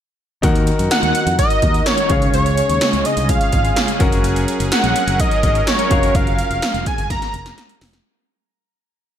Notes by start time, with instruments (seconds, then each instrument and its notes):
0.42 fretless electric bass D#2, analog synth pad D#3 D#4 F#4 A#4, grand piano D#3 D#4 F#4 A#4 F#5, kick, closed hi-hat
0.55 closed hi-hat
0.67 closed hi-hat
0.79 fretless electric bass F#2, closed hi-hat
0.91 analog synth lead F#5, snare, closed hi-hat
1.03 fretless electric bass D#2, closed hi-hat
1.15 closed hi-hat
1.26 fretless electric bass F2, closed hi-hat
1.39 analog synth lead D#5, kick, closed hi-hat
1.50 closed hi-hat
1.62 fretless electric bass D#2, kick, closed hi-hat
1.74 closed hi-hat
1.86 analog synth lead C#5, snare, closed hi-hat
1.98 closed hi-hat
2.09 fretless electric bass C#2, grand piano C#3 C#4 G#4 C#5 F5, analog synth pad C#3 G#3 C#4 G#4, kick, closed hi-hat
2.22 closed hi-hat
2.34 fretless electric bass C#2, analog synth lead C#5, closed hi-hat
2.46 closed hi-hat
2.57 closed hi-hat
2.69 fretless electric bass D#2, closed hi-hat
2.81 snare, closed hi-hat
2.93 fretless electric bass C#2, closed hi-hat
3.05 analog synth lead D#5, closed hi-hat
3.17 fretless electric bass C2, closed hi-hat
3.29 analog synth lead F5, kick, closed hi-hat
3.41 closed hi-hat
3.52 fretless electric bass G#1, kick, closed hi-hat
3.65 closed hi-hat
3.76 snare, closed hi-hat
3.88 closed hi-hat
3.99 fretless electric bass F#1, analog synth pad F#3 C#4 A#4, grand piano C#4 F#4 A#4 F#5, kick, closed hi-hat
4.12 closed hi-hat
4.24 closed hi-hat
4.36 closed hi-hat
4.48 closed hi-hat
4.60 fretless electric bass F#1, closed hi-hat
4.72 analog synth lead F#5, snare, closed hi-hat
4.84 fretless electric bass A#1, closed hi-hat
4.96 closed hi-hat
5.07 fretless electric bass F#1, closed hi-hat
5.20 analog synth lead D#5, kick, closed hi-hat
5.31 closed hi-hat
5.43 fretless electric bass G#1, kick, closed hi-hat
5.55 closed hi-hat
5.67 analog synth lead C#5, snare, closed hi-hat
5.79 closed hi-hat
5.89 fretless electric bass F1, grand piano C#4 F#4 A#4 F5, kick, closed hi-hat
6.03 closed hi-hat
6.15 fretless electric bass F#1, analog synth lead F5, kick, closed hi-hat
6.27 closed hi-hat
6.38 closed hi-hat
6.50 fretless electric bass F1, closed hi-hat
6.62 snare, closed hi-hat
6.74 fretless electric bass F1, closed hi-hat
6.86 analog synth lead G#5, kick, closed hi-hat
6.98 fretless electric bass F#1, closed hi-hat
7.10 analog synth lead A#5, kick, snare, closed hi-hat
7.22 snare, closed hi-hat
7.34 fretless electric bass F1, closed hi-hat
7.46 snare, closed hi-hat
7.58 snare, closed hi-hat
7.69 closed hi-hat
7.81 fretless electric bass F1, snare, open hi-hat
7.93 snare, closed hi-hat